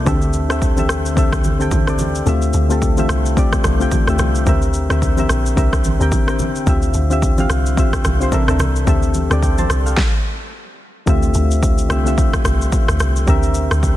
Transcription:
0.05 D2 D3 C4 G4 A4 E5, kick, low conga, shaker
0.22 shaker
0.33 shaker
0.49 D3 C4 G4 A4 E5, cross-stick, shaker
0.62 kick, shaker
0.76 D3 C4 G4 A4 E5, high conga, shaker
0.89 cross-stick, shaker
1.06 shaker
1.15 D3 C4 G4 A4 E5, kick, shaker
1.32 kick, cross-stick, shaker
1.44 high conga, shaker
1.59 D3 C4 G4 A4 G5, shaker
1.71 kick, high conga, low conga, shaker
1.86 D3 C4 G4 A4 D5, cross-stick, shaker
1.99 high conga, low conga, shaker
2.15 shaker
2.25 D2 D3 A3 C4 F4 G4 E5, low conga, shaker
2.42 shaker
2.53 D2, shaker
2.69 D3 A3 C4 F4 G4 A4, shaker
2.82 kick, shaker
2.96 D3 A3 C4 F4 G4 E5, high conga, shaker
3.09 C2, cross-stick, shaker
3.26 shaker
3.35 D3 A3 C4 F4 G4 D5, kick, shaker
3.53 kick, cross-stick, shaker
3.64 C2, cross-stick, high conga, shaker
3.79 D3 A3 C4 F4 G4 G5, shaker
3.92 kick, high conga, shaker
4.06 D2 D3 A3 C4 F4 G4 E5, cross-stick, shaker
4.19 C2, cross-stick, high conga, low conga, shaker
4.35 shaker
4.46 D2 D3 C4 G4 A#4 E5, kick, low conga, shaker
4.62 shaker
4.74 shaker
4.89 D2 D3 C4 G4 A#4 E5, cross-stick, shaker
5.02 kick, shaker
5.17 D3 C4 G4 A#4 E5, high conga, shaker
5.29 A#1, cross-stick, shaker
5.46 shaker
5.56 C2 D3 C4 G4 A#4 E5, kick, shaker
5.73 kick, cross-stick, shaker
5.84 high conga, shaker
5.99 D2 D3 C4 G4 A#4 G5, shaker
6.12 kick, high conga, shaker
6.27 D3 C4 G4 A#4 G5, cross-stick, shaker
6.39 high conga, low conga, shaker
6.56 shaker
6.66 D2 D3 C4 F4 G4 E5, kick, low conga, shaker
6.82 shaker
6.94 D2, shaker
7.09 D3 C4 F4 G4 E5, shaker
7.22 kick, shaker
7.37 D3 C4 F4 G4 F5, high conga, shaker
7.50 C2, cross-stick, shaker
7.66 shaker
7.76 D3 C4 F4 G4 E5, kick, shaker
7.93 kick, cross-stick, shaker
8.05 C2, cross-stick, high conga, shaker
8.20 D3 C4 F4 G4 C5, shaker
8.31 C3 C4 D4 A4 A#4 E5, kick, high conga, shaker
8.47 D2 C3 C4 D4 A4 A#4 E5, cross-stick, shaker
8.59 C2, cross-stick, high conga, low conga, shaker
8.76 shaker
8.86 D2 D3 C4 G4 A4 E5, kick, low conga, shaker
9.03 shaker
9.14 high conga, shaker
9.29 D2 D3 C4 G4 A4 D5, cross-stick, shaker
9.43 G5, kick, shaker
9.58 C5 A5, high conga, shaker
9.70 C2, cross-stick, shaker
9.86 A4 F5, shaker
9.97 kick, snare
11.06 D2 D3 A3 C4 F4 G4 E5, kick, shaker
11.23 shaker
11.34 D2, shaker
11.51 shaker
11.63 kick, shaker
11.78 shaker
11.89 C2 D3 A3 C4 F4 G4 E5, cross-stick, shaker
12.04 D3 A3 C4 F4 G4 E5, shaker
12.18 kick, shaker
12.33 kick, cross-stick, shaker
12.45 C2, cross-stick, shaker
12.61 shaker
12.72 kick, shaker
12.88 D2, cross-stick, shaker
13.00 C2, cross-stick, shaker
13.16 shaker
13.26 D2 D3 C4 G4 A#4 E5, kick, shaker
13.43 shaker
13.54 shaker
13.71 D2, cross-stick, shaker
13.83 kick, shaker

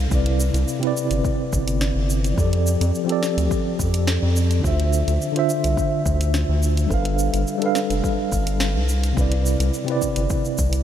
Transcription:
0.07 C2 C3 C4 E4, shaker
0.11 B4 D5, kick
0.26 closed hi-hat
0.40 shaker
0.54 C2, closed hi-hat, shaker
0.68 shaker
0.79 C3 C4
0.83 E4 B4, closed hi-hat
0.87 D5
0.97 shaker
1.11 G1, closed hi-hat, shaker
1.25 kick, shaker
1.53 G1, kick, shaker
1.68 closed hi-hat, shaker
1.81 snare, shaker
1.96 G1
2.10 shaker
2.24 closed hi-hat, shaker
2.33 F2 F3 C4 G4
2.38 A4 D5, kick, shaker
2.53 closed hi-hat
2.67 shaker
2.81 F2, closed hi-hat, shaker
2.95 shaker
3.04 F3 C4 G4
3.09 A4 D5, closed hi-hat
3.23 snare, shaker
3.37 D2, closed hi-hat, shaker
3.51 kick, shaker
3.79 F2, kick, shaker
3.94 closed hi-hat, shaker
4.07 snare, shaker
4.23 F2
4.36 shaker
4.51 closed hi-hat, shaker
4.60 D3 D4 F4
4.64 D2 C5 E5, kick, shaker
4.80 closed hi-hat
4.93 shaker
5.08 D2, closed hi-hat, shaker
5.22 shaker
5.31 D3 D4 F4
5.36 C5 E5, closed hi-hat
5.49 shaker
5.64 C2, closed hi-hat, shaker
5.77 kick, shaker
6.06 D2, kick, shaker
6.21 closed hi-hat, shaker
6.34 snare, shaker
6.49 D2
6.63 shaker
6.77 closed hi-hat, shaker
6.86 G3 D4 A4
6.90 G1 B4 F5, kick, shaker
7.05 closed hi-hat
7.19 shaker
7.34 G1, closed hi-hat, shaker
7.47 shaker
7.58 G3 D4 A4, closed hi-hat
7.64 B4 F5
7.75 snare, shaker
7.90 F1, closed hi-hat, shaker
8.04 kick, shaker
8.32 G1, kick, shaker
8.47 closed hi-hat, shaker
8.60 snare, shaker
8.75 C2
8.89 shaker
9.04 closed hi-hat, shaker
9.13 C3 C4
9.17 C2 E4 B4, kick, shaker
9.21 D5
9.32 closed hi-hat
9.46 shaker
9.60 C2, closed hi-hat, shaker
9.74 shaker
9.84 C3 C4 E4, closed hi-hat
9.90 B4 D5
10.02 kick, shaker
10.16 G1, closed hi-hat, shaker
10.30 kick, shaker
10.45 shaker
10.58 C2, kick, shaker
10.73 closed hi-hat, shaker

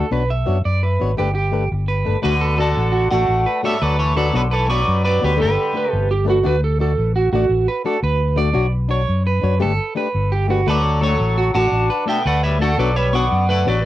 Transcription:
0.11 B1 B3 D4 F#4 B4 C#5
0.30 E5
0.46 F#2 B3 D4 F#4 C#5
0.65 F#2 D5
0.83 B4
1.00 G#1 B3 D4 F#4 C#5
1.17 G1 A3 D4 G4 A4 B4
1.35 G4
1.52 A3 D4 A4 B4
1.72 G1
1.88 B4
2.05 G1 A3 D4 A4 B4
2.22 D2 D3 A3 D4 F#4 B4 D5
2.41 A4
2.57 D3 A3 D4 F#4 A4 D5
2.77 A1
2.92 F#4
3.11 A1 A3 D4 F#4 D5 F#5
3.29 A1
3.46 B4
3.63 G3 A3 D4 F#4 A4 C#5 D5 E5
3.81 D2 F#3 A4 B4 D5
3.99 E3 A4 C#5
4.15 F#3 A3 D4 F#4 A4 B4 D5
4.33 B1 D3 B3 D4 F#4 B4 C#5
4.51 A4 B4 C#5
4.56 E3
4.68 B3 D4 F#4 B4 C#5 D5 C#6
4.73 F#3
4.88 F#2
5.05 F#3 B4 D5
5.21 D2 B3 D4 F#4 G4 C#5
5.25 D3 B4
5.37 G1 A3 D4 A4 B4
5.42 D3 G4 B4
5.73 A3 D4 A4 B4
5.91 G1 C3 A4
6.11 G4
6.25 A3 D4 A4 B4
6.29 F#4
6.43 D2 A3 D4 F#4 B4 D5
6.64 A4
6.79 A3 D4 F#4 A4 D5
6.98 A1
7.16 F#4
7.32 A1 A3 D4 F#4 D5
7.49 A1
7.68 B4
7.84 A3 D4 F#4 A4 D5
8.03 D2 B4
8.36 A3 D4 F#4 D5
8.53 B1 D4 F#4 C#5
8.89 D4 F#4 C#5
9.09 F#2
9.27 B4
9.41 F#2 D4 F#4 C#5
9.60 G1 A3 D4 G4 A4 B4
9.95 A3 D4 G4 B4
10.15 G1
10.32 G4
10.48 A3 D4 F#4 G4 B4
10.67 D2 A3 D4 F#4 A4 B4 D5
10.72 F#3
10.85 muted clean electric guitar stroke
11.01 A3 D4 F#4 A4 C#5
11.07 F#3
11.20 A1
11.38 F#4
11.54 A1 A3 D4 F#4 F#5 A5
11.72 A1
11.90 B4
12.06 A3 D4 F#4 A4 E5 G5
12.10 B3
12.26 D2 A3 B4 D5 F#5
12.43 G3 C#5 E5
12.59 A3 D4 F#4 A4 D5 F#5
12.78 B1 F#3 B3 D4 F#4 B4 C#5 D5
12.96 G3 B4 C#5 E5
13.13 B3 D4 F#4 C#5 D5 F#5 C#6
13.32 F#2
13.49 A3 B4 D5 F#5
13.65 A1 F#3 B3 D4 F#4 C#5 D5
13.69 B4

